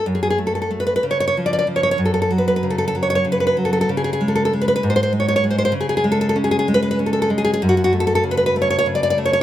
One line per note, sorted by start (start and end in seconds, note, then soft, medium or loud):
0.06 1.02 F#2 medium
0.15 0.22 G#4 medium
0.23 0.29 G#4 medium
0.30 0.38 G#4 medium
0.38 0.69 A3 soft
0.47 0.54 A4 medium
0.55 0.60 A4 medium
0.62 0.70 A4 medium
0.71 1.00 A3 soft
0.80 0.85 B4 medium
0.87 0.95 B4 medium
0.96 1.04 B4 medium
1.03 1.96 C#3 medium
1.11 1.19 C#5 medium
1.20 1.26 C#5 medium
1.28 1.36 C#5 medium
1.37 1.66 F3 soft
1.46 1.52 D5 medium
1.53 1.57 D5 medium
1.59 1.67 D5 medium
1.67 1.96 F3 soft
1.76 1.82 C#5 medium
1.83 1.90 C#5 medium
1.91 1.99 C#5 medium
1.98 3.84 F#2 medium
2.05 2.13 A4 medium
2.14 2.21 A4 medium
2.22 2.31 A4 medium
2.31 2.94 F#3 soft
2.38 2.46 B4 medium
2.48 2.55 B4 medium
2.56 2.64 B4 medium
2.63 3.23 C#3 soft
2.70 2.77 A4 medium
2.78 2.86 A4 medium
2.88 2.95 A4 medium
2.95 3.56 F#3 soft
3.03 3.09 C#5 medium
3.10 3.14 C#5 medium
3.15 3.24 C#5 medium
3.25 3.88 C#3 soft
3.32 3.39 B4 medium
3.40 3.46 B4 medium
3.47 3.56 B4 medium
3.57 3.89 F#3 soft
3.65 3.72 A4 medium
3.73 3.80 A4 medium
3.81 3.89 A4 medium
3.89 4.80 C#3 medium
3.97 4.03 G#4 medium
4.04 4.12 G#4 medium
4.13 4.20 G#4 medium
4.21 4.52 G#3 soft
4.28 4.34 A4 medium
4.35 4.43 A4 medium
4.45 4.52 A4 medium
4.53 4.80 G#3 soft
4.61 4.67 B4 medium
4.68 4.74 B4 medium
4.76 4.83 B4 medium
4.83 5.71 G#2 medium
4.90 4.95 C5 medium
4.96 5.02 C5 medium
5.03 5.12 C5 medium
5.13 5.43 G#3 soft
5.20 5.27 C#5 medium
5.28 5.35 C#5 medium
5.36 5.43 C#5 medium
5.44 5.71 G#3 soft
5.50 5.57 C5 medium
5.58 5.64 C5 medium
5.65 5.73 C5 medium
5.72 7.56 C#3 medium
5.81 5.88 G#4 medium
5.89 5.96 G#4 medium
5.97 6.05 G#4 medium
6.04 6.67 G#3 soft
6.12 6.20 A4 medium
6.21 6.28 A4 medium
6.29 6.37 A4 medium
6.36 6.98 C#4 soft
6.44 6.50 G#4 medium
6.51 6.58 G#4 medium
6.59 6.67 G#4 medium
6.68 7.29 G#3 medium
6.74 6.81 B4 medium
6.83 6.90 B4 medium
6.91 6.98 B4 medium
6.99 7.61 C#4 soft
7.06 7.12 A4 medium
7.13 7.21 A4 medium
7.22 7.29 A4 medium
7.30 7.61 G#3 soft
7.38 7.43 G#4 medium
7.45 7.52 G#4 medium
7.53 7.61 G#4 medium
7.62 9.43 F#2 medium
7.69 7.76 F#4 medium
7.77 7.83 F#4 medium
7.84 7.92 F#4 medium
7.93 8.55 A3 medium
8.00 8.06 A4 medium
8.07 8.14 A4 medium
8.15 8.23 A4 medium
8.24 8.85 C#3 soft
8.31 8.36 B4 medium
8.37 8.45 B4 medium
8.46 8.54 B4 medium
8.56 9.17 A3 medium
8.62 8.69 C#5 medium
8.70 8.77 C#5 medium
8.79 8.86 C#5 medium
8.86 9.43 C#3 soft
8.95 9.02 D5 medium
9.03 9.09 D5 medium
9.10 9.18 D5 medium
9.18 9.43 A3 soft
9.25 9.32 C#5 medium
9.33 9.40 C#5 medium